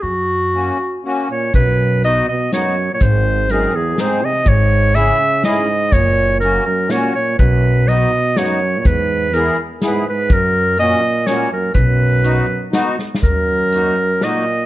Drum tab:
HH |------------------|x-----x-----x-----|x-----x-----x-----|x-----x-----x-----|
SD |------------------|------------o-----|------------o-----|------------o-----|
BD |------------------|o-----------------|o-----------------|o-----------------|

HH |x-----x-----x-----|x-----x-----x-----|x-----x-----x-----|x-----x-----x-----|
SD |------------o-----|------------o-----|------------o-----|------------o-----|
BD |o-----------------|o-----------------|o-----------------|o-----------------|

HH |x-----x-----x-----|x-----x-----x-----|
SD |------------o--o-o|------------o-----|
BD |o-----------------|o-----------------|